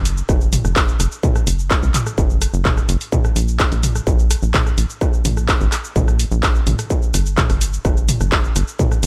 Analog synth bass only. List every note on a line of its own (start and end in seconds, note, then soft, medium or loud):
0.00 0.23 F#1 medium
0.29 0.58 F#1 medium
0.65 0.94 F#1 medium
1.00 1.08 F#1 medium
1.47 1.76 F#1 loud
1.83 1.90 C#2 medium
2.18 2.47 F#1 loud
2.54 2.83 F#1 loud
2.89 2.97 F#1 loud
3.36 3.65 A#1 loud
3.72 4.01 A#1 medium
4.07 4.36 A#1 medium
4.43 4.72 A#1 medium
4.78 4.86 A#1 medium
5.25 5.54 A#1 loud
5.61 5.68 G#1 medium
5.96 6.25 A#1 loud
6.32 6.61 A#1 loud
6.67 6.75 A#1 loud
7.14 7.43 G1 loud
7.50 7.79 G1 medium
7.85 8.14 G1 medium
8.21 8.50 G1 medium
8.56 8.64 G1 medium
9.03 9.07 G1 loud